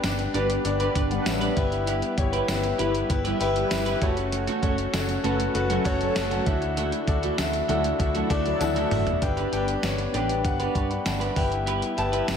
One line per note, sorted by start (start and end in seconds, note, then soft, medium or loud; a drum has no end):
0.00 0.26 G1 loud
0.00 3.98 G3 medium
0.00 3.98 B3 medium
0.00 0.03 D4 loud
0.00 1.54 D4 medium
0.00 0.31 D4 medium
0.00 0.04 G4 medium
0.00 0.31 G4 medium
0.00 0.04 B4 loud
0.00 muted clean electric guitar stroke soft
0.00 snare loud
0.00 closed hi-hat loud
0.00 tambourine medium
0.04 0.31 B4 medium
0.04 tambourine medium
0.19 muted clean electric guitar stroke medium
0.19 closed hi-hat medium
0.34 0.56 G1 loud
0.34 0.47 G3 medium
0.34 0.61 D4 medium
0.34 0.52 D4 medium
0.34 0.47 D4 medium
0.34 0.62 G4 medium
0.34 0.49 G4 medium
0.34 0.47 B4 loud
0.34 0.62 B4 medium
0.34 0.48 B4 loud
0.34 closed hi-hat medium
0.50 muted clean electric guitar stroke soft
0.50 closed hi-hat medium
0.65 0.87 G1 loud
0.65 0.92 D4 medium
0.65 0.92 G4 medium
0.65 0.92 D5 loud
0.65 muted clean electric guitar stroke soft
0.65 closed hi-hat medium
0.80 0.93 G3 medium
0.80 0.93 D4 medium
0.80 0.94 D4 medium
0.80 0.95 G4 medium
0.80 0.95 B4 medium
0.80 0.93 B4 loud
0.80 closed hi-hat medium
0.95 1.18 G1 loud
0.95 1.10 D4 medium
0.95 1.10 G4 medium
0.95 1.11 B4 medium
0.95 1.09 B4 medium
0.95 1.10 D5 medium
0.95 kick loud
0.95 closed hi-hat medium
1.11 1.54 G3 loud
1.11 1.54 D4 loud
1.11 1.54 B4 loud
1.11 1.26 D5 medium
1.11 1.26 F#5 medium
1.11 muted clean electric guitar stroke soft
1.11 closed hi-hat soft
1.26 1.48 A1 loud
1.26 1.41 C#5 medium
1.26 1.41 E5 medium
1.26 snare loud
1.26 closed hi-hat loud
1.26 tambourine medium
1.41 1.56 D4 medium
1.41 1.56 G4 medium
1.41 1.56 B4 medium
1.41 1.71 D5 medium
1.41 closed hi-hat medium
1.56 2.01 G1 loud
1.56 2.11 E4 medium
1.56 1.71 E4 medium
1.56 3.99 E4 medium
1.56 2.11 G4 medium
1.56 1.71 G4 medium
1.56 2.11 B4 loud
1.56 1.70 B4 medium
1.56 kick loud
1.56 closed hi-hat medium
1.71 muted clean electric guitar stroke soft
1.71 closed hi-hat soft
1.87 2.05 E4 medium
1.87 2.02 G4 medium
1.87 2.01 B4 loud
1.87 closed hi-hat loud
2.02 muted clean electric guitar stroke medium
2.02 closed hi-hat medium
2.17 2.40 G1 loud
2.17 2.45 E4 medium
2.17 2.45 G4 medium
2.17 2.45 C#5 medium
2.17 muted clean electric guitar stroke soft
2.17 kick medium
2.17 closed hi-hat medium
2.33 2.48 E4 medium
2.33 2.48 G4 medium
2.33 2.47 B4 medium
2.33 closed hi-hat medium
2.48 2.71 G1 loud
2.48 2.75 E4 medium
2.48 2.76 G4 medium
2.48 2.76 B4 loud
2.48 snare loud
2.48 closed hi-hat loud
2.48 tambourine medium
2.64 muted clean electric guitar stroke medium
2.64 closed hi-hat medium
2.79 3.01 G1 loud
2.79 2.92 G3 medium
2.79 2.97 E4 medium
2.79 3.06 E4 medium
2.79 2.92 E4 medium
2.79 3.06 G4 medium
2.79 2.94 G4 medium
2.79 2.92 B4 medium
2.79 3.07 B4 medium
2.79 2.93 B4 loud
2.79 closed hi-hat medium
2.94 muted clean electric guitar stroke medium
2.94 closed hi-hat medium
3.09 3.32 G1 loud
3.09 3.37 E4 medium
3.09 3.37 G4 medium
3.09 3.37 B4 loud
3.09 muted clean electric guitar stroke soft
3.09 kick loud
3.09 closed hi-hat medium
3.25 3.38 G3 medium
3.25 3.38 E4 medium
3.25 3.39 E4 medium
3.25 3.40 G4 medium
3.25 3.40 B4 medium
3.25 3.38 B4 loud
3.25 closed hi-hat medium
3.40 3.62 G1 loud
3.40 3.54 E4 medium
3.40 3.67 E4 loud
3.40 3.68 G4 loud
3.40 3.55 G4 medium
3.40 3.68 B4 loud
3.40 3.54 B4 medium
3.40 closed hi-hat medium
3.56 3.99 G3 loud
3.56 3.99 E4 loud
3.56 3.99 B4 loud
3.56 muted clean electric guitar stroke soft
3.56 closed hi-hat soft
3.70 3.93 G1 medium
3.70 3.98 E4 loud
3.70 3.98 G4 loud
3.70 3.98 B4 loud
3.70 muted clean electric guitar stroke soft
3.70 snare loud
3.70 closed hi-hat loud
3.70 tambourine medium
3.86 4.02 E4 medium
3.86 4.03 G4 medium
3.86 4.04 B4 medium
3.86 closed hi-hat medium
4.01 4.46 F#1 medium
4.01 4.16 A3 medium
4.01 9.18 A3 medium
4.01 6.44 C#4 medium
4.01 4.16 C#4 medium
4.01 4.56 F#4 medium
4.01 6.44 F#4 medium
4.01 4.16 F#4 medium
4.01 4.56 A4 medium
4.01 4.56 C#5 loud
4.01 kick loud
4.01 closed hi-hat medium
4.17 muted clean electric guitar stroke medium
4.17 closed hi-hat soft
4.32 muted clean electric guitar stroke medium
4.32 closed hi-hat medium
4.47 4.61 A3 medium
4.47 4.62 C#4 medium
4.47 4.63 F#4 medium
4.47 closed hi-hat medium
4.62 4.85 F#1 loud
4.62 4.77 A3 medium
4.62 4.77 C#4 medium
4.62 4.90 F#4 medium
4.62 4.77 F#4 medium
4.62 4.90 A4 medium
4.62 4.90 C#5 medium
4.62 kick medium
4.62 closed hi-hat medium
4.78 muted clean electric guitar stroke soft
4.78 closed hi-hat medium
4.93 5.16 F#1 loud
4.93 5.20 F#4 medium
4.93 5.21 A4 medium
4.93 5.21 C#5 medium
4.93 muted clean electric guitar stroke soft
4.93 snare loud
4.93 closed hi-hat medium
4.93 tambourine medium
5.09 muted clean electric guitar stroke soft
5.09 closed hi-hat medium
5.23 5.46 F#1 loud
5.23 5.37 F#3 medium
5.23 5.42 A3 medium
5.23 5.37 C#4 medium
5.23 5.39 C#4 loud
5.23 5.51 F#4 medium
5.23 5.38 F#4 medium
5.23 5.51 A4 medium
5.23 5.37 A4 medium
5.23 5.52 B4 medium
5.23 closed hi-hat medium
5.39 muted clean electric guitar stroke soft
5.39 closed hi-hat medium
5.54 5.77 F#1 loud
5.54 5.82 F#4 medium
5.54 5.82 A4 medium
5.54 5.82 B4 loud
5.54 muted clean electric guitar stroke soft
5.54 closed hi-hat medium
5.70 5.83 F#3 medium
5.70 5.84 A3 medium
5.70 5.83 C#4 medium
5.70 5.85 C#4 medium
5.70 5.85 F#4 medium
5.70 5.83 A4 loud
5.70 closed hi-hat medium
5.85 6.07 F#1 loud
5.85 5.99 A3 medium
5.85 6.00 C#4 medium
5.85 6.12 F#4 loud
5.85 5.99 F#4 medium
5.85 6.12 A4 loud
5.85 6.13 C#5 loud
5.85 kick medium
5.85 closed hi-hat medium
6.00 6.44 F#3 loud
6.00 6.44 C#4 medium
6.00 6.44 A4 loud
6.00 muted clean electric guitar stroke medium
6.00 closed hi-hat soft
6.15 6.38 F#1 loud
6.15 6.43 F#4 loud
6.15 6.43 A4 loud
6.15 6.43 C#5 loud
6.15 muted clean electric guitar stroke soft
6.15 snare loud
6.15 closed hi-hat loud
6.15 tambourine medium
6.31 6.45 A3 medium
6.31 6.47 C#4 medium
6.31 6.46 F#4 medium
6.31 closed hi-hat medium
6.46 6.91 D2 loud
6.46 9.19 D3 medium
6.46 6.61 A3 medium
6.46 7.01 D4 medium
6.46 7.01 E4 medium
6.46 9.19 E4 medium
6.46 6.61 E4 medium
6.46 7.01 F#4 medium
6.46 9.19 F#4 medium
6.46 6.60 F#4 medium
6.46 7.01 A4 medium
6.46 7.01 E5 loud
6.46 kick loud
6.46 closed hi-hat medium
6.62 muted clean electric guitar stroke soft
6.62 closed hi-hat soft
6.77 6.95 A3 medium
6.77 6.92 E4 loud
6.77 6.91 F#4 medium
6.77 closed hi-hat loud
6.92 muted clean electric guitar stroke soft
6.92 closed hi-hat soft
7.07 7.30 D2 loud
7.07 7.35 D4 medium
7.07 7.35 E4 medium
7.07 7.35 F#4 medium
7.07 7.35 A4 medium
7.07 7.35 D5 loud
7.07 muted clean electric guitar stroke soft
7.07 kick medium
7.07 closed hi-hat medium
7.23 7.38 A3 medium
7.23 7.37 E4 medium
7.23 7.37 F#4 medium
7.23 closed hi-hat medium
7.38 7.60 D2 loud
7.38 7.65 D4 medium
7.38 7.65 E4 medium
7.38 7.66 F#4 medium
7.38 7.66 A4 medium
7.38 7.66 E5 loud
7.38 snare loud
7.38 closed hi-hat loud
7.38 tambourine medium
7.53 muted clean electric guitar stroke soft
7.53 closed hi-hat medium
7.68 7.91 D2 loud
7.68 7.82 F#3 medium
7.68 7.87 A3 medium
7.68 7.96 D4 medium
7.68 7.96 E4 medium
7.68 7.82 E4 medium
7.68 7.84 E4 loud
7.68 7.96 F#4 medium
7.68 7.83 F#4 loud
7.68 7.82 A4 loud
7.68 7.96 A4 medium
7.68 7.96 E5 medium
7.68 closed hi-hat medium
7.84 muted clean electric guitar stroke soft
7.84 closed hi-hat medium
7.99 8.22 D2 loud
7.99 8.26 D4 medium
7.99 8.27 E4 medium
7.99 8.27 F#4 medium
7.99 8.27 A4 medium
7.99 8.27 E5 loud
7.99 muted clean electric guitar stroke soft
7.99 kick loud
7.99 closed hi-hat medium
8.14 8.28 F#3 medium
8.14 8.29 A3 medium
8.14 8.28 E4 medium
8.14 8.29 E4 medium
8.14 8.30 F#4 medium
8.14 8.28 A4 loud
8.14 closed hi-hat medium
8.30 8.52 D2 loud
8.30 8.44 A3 medium
8.30 8.57 D4 loud
8.30 8.57 E4 loud
8.30 8.45 E4 medium
8.30 8.57 F#4 loud
8.30 8.44 F#4 medium
8.30 8.58 A4 loud
8.30 8.58 D5 loud
8.30 kick loud
8.30 closed hi-hat medium
8.45 8.89 F#3 loud
8.45 8.89 E4 loud
8.45 8.89 A4 loud
8.45 muted clean electric guitar stroke medium
8.45 closed hi-hat soft
8.60 8.83 D2 loud
8.60 8.88 D4 loud
8.60 8.88 E4 loud
8.60 8.88 F#4 loud
8.60 8.88 A4 loud
8.60 8.88 E5 loud
8.60 8.89 A5 medium
8.60 muted clean electric guitar stroke soft
8.60 closed hi-hat loud
8.60 high tom medium
8.60 tambourine medium
8.76 8.90 A3 medium
8.76 8.91 E4 medium
8.76 8.91 F#4 medium
8.76 closed hi-hat medium
8.91 9.13 F#1 medium
8.91 9.05 A3 medium
8.91 9.19 D4 medium
8.91 9.19 E4 medium
8.91 9.06 E4 medium
8.91 9.19 F#4 medium
8.91 9.05 F#4 medium
8.91 9.19 A4 medium
8.91 9.19 E5 medium
8.91 mid tom loud
8.91 open hi-hat medium
9.07 muted clean electric guitar stroke medium
9.07 closed hi-hat soft
9.07 floor tom medium
9.22 9.44 G1 loud
9.22 12.37 G3 medium
9.22 11.34 B3 medium
9.22 9.49 D4 loud
9.22 11.34 D4 medium
9.22 9.49 G4 medium
9.22 9.49 B4 medium
9.22 9.50 G5 loud
9.22 muted clean electric guitar stroke soft
9.22 kick loud
9.22 closed hi-hat medium
9.37 9.51 D4 medium
9.37 9.52 G4 medium
9.37 9.53 B4 medium
9.37 closed hi-hat soft
9.52 9.74 G1 loud
9.52 9.80 D4 loud
9.52 9.67 D4 medium
9.52 9.80 G4 medium
9.52 9.67 G4 medium
9.52 9.80 B4 medium
9.52 9.67 B4 medium
9.52 9.80 G5 loud
9.52 closed hi-hat medium
9.68 muted clean electric guitar stroke soft
9.68 closed hi-hat medium
9.83 10.05 G1 medium
9.83 10.10 D4 medium
9.83 10.10 G4 medium
9.83 10.11 B4 medium
9.83 10.11 C#5 medium
9.83 snare loud
9.83 closed hi-hat medium
9.83 tambourine medium
9.98 muted clean electric guitar stroke soft
9.98 closed hi-hat medium
10.13 10.46 A1 medium
10.13 10.41 D4 medium
10.13 10.32 D4 medium
10.13 10.41 G4 medium
10.13 10.29 G4 medium
10.13 10.41 B4 medium
10.13 10.28 B4 medium
10.13 10.41 G5 medium
10.13 closed hi-hat medium
10.29 muted clean electric guitar stroke soft
10.29 closed hi-hat medium
10.44 10.67 G1 medium
10.44 10.71 D4 medium
10.44 10.72 G4 medium
10.44 10.72 B4 medium
10.44 10.72 F#5 loud
10.44 muted clean electric guitar stroke soft
10.44 kick medium
10.44 closed hi-hat medium
10.60 10.74 D4 medium
10.60 10.75 G4 medium
10.60 10.75 B4 medium
10.60 closed hi-hat medium
10.75 10.97 G2 medium
10.75 10.89 D4 medium
10.75 10.90 G4 medium
10.75 10.89 B4 medium
10.75 10.90 A5 medium
10.75 10.90 C#6 medium
10.75 kick medium
10.75 closed hi-hat medium
10.90 11.05 G5 medium
10.90 11.05 B5 medium
10.90 muted clean electric guitar stroke soft
10.90 closed hi-hat soft
11.05 11.28 G1 loud
11.05 11.21 F#5 medium
11.05 11.20 A5 medium
11.05 muted clean electric guitar stroke soft
11.05 snare loud
11.05 closed hi-hat medium
11.05 tambourine medium
11.20 11.35 D4 medium
11.20 11.35 G4 medium
11.20 11.36 B4 medium
11.20 11.50 E5 medium
11.20 11.35 G5 medium
11.20 closed hi-hat medium
11.36 11.80 G1 loud
11.36 12.37 B3 medium
11.36 11.90 E4 medium
11.36 11.50 E4 medium
11.36 12.37 E4 medium
11.36 11.91 G4 medium
11.36 11.51 G4 medium
11.36 11.91 B4 medium
11.36 11.50 B4 medium
11.36 11.91 G5 medium
11.36 kick loud
11.36 open hi-hat medium
11.51 muted clean electric guitar stroke soft
11.51 closed hi-hat soft
11.66 11.85 E4 medium
11.66 11.82 G4 medium
11.66 11.81 B4 medium
11.66 closed hi-hat medium
11.82 muted clean electric guitar stroke soft
11.82 closed hi-hat soft
11.97 12.20 G1 medium
11.97 12.24 E4 loud
11.97 12.25 G4 loud
11.97 12.25 B4 loud
11.97 12.25 A5 loud
11.97 muted clean electric guitar stroke soft
11.97 closed hi-hat medium
12.12 12.27 E4 medium
12.12 12.27 G4 medium
12.12 12.27 B4 medium
12.12 closed hi-hat medium
12.28 12.37 G1 loud
12.28 12.37 E4 medium
12.28 12.37 G4 medium
12.28 12.37 B4 medium
12.28 12.37 G5 medium
12.28 snare loud
12.28 closed hi-hat medium
12.28 tambourine medium